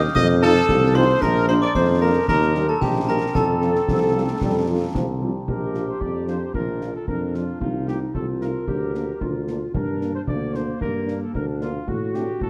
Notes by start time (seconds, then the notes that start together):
Already playing: D#6
0.15 F2 D#5 D#6, concert bass drum, snare
0.29 snare
0.42 F3 C4 D#4 F4 A4 A5, snare
0.69 C2, concert bass drum, snare
0.95 F3 C4 D#4 F4 C5 C6
1.21 A#1 A#4 A#5, concert bass drum, snare, crash
1.48 F3 A#3 D4 F4 C5 C6, snare
1.62 D5 D6, snare
1.75 F2 C5 C6, concert bass drum, snare
2.01 F3 A#3 D4 F4 A#4 A#5
2.28 D#2 A#4 A#5, concert bass drum, snare
2.42 snare
2.55 G3 A#3 D#4 G4, snare
2.68 A4 A5
2.81 A#1 G4 G5, concert bass drum, snare
3.08 G3 A#3 D#4 G4 A#4 A#5
3.35 F2 A4 A5, concert bass drum, snare
3.61 F3 C4 F4, snare
3.75 snare
3.88 C2 F3, concert bass drum, snare
4.15 F3 G3 C4 F4
4.29 A3
4.41 F2 G3, concert bass drum, snare
4.68 F3 C4 F4
4.94 C2 F3, concert bass drum, snare
5.21 F3 G3 C4 F4
5.47 A#1 G4 A#4, concert bass drum
5.74 F3 D4 F4, snare
5.89 C5
6.01 F2 D5, concert bass drum
6.27 F3 D4 F4 C5, snare
6.54 A#1 F4 A#4, concert bass drum
6.81 F3 D4 F4, snare
6.95 A4
7.07 F2 D4 A#4, concert bass drum
7.34 F3 D4 F4, snare
7.61 C2 D#4 F4, concert bass drum
7.87 A3 D#4 F4 G4, snare
8.14 C2 F4 A4, concert bass drum
8.41 A3 D#4 F4 A#4, snare
8.68 D2 G4, concert bass drum
8.94 A#3 D4 F4, snare
9.21 D2 F4, concert bass drum
9.48 A#3 D4 F4, snare
9.74 G2 D4 A#4, concert bass drum
10.01 A#3 D4, snare
10.15 C5
10.28 D2 A#3 D5, concert bass drum
10.54 A#3 D4 C5, snare
10.81 G2 A#4, concert bass drum
11.07 A#3 D4, snare
11.22 A4
11.34 D2 D4 A#4, concert bass drum
11.61 A#3 D4 F4, snare
11.88 A2 F#4, concert bass drum
12.14 A3 C4 D4 G4, snare
12.41 A2 A4, concert bass drum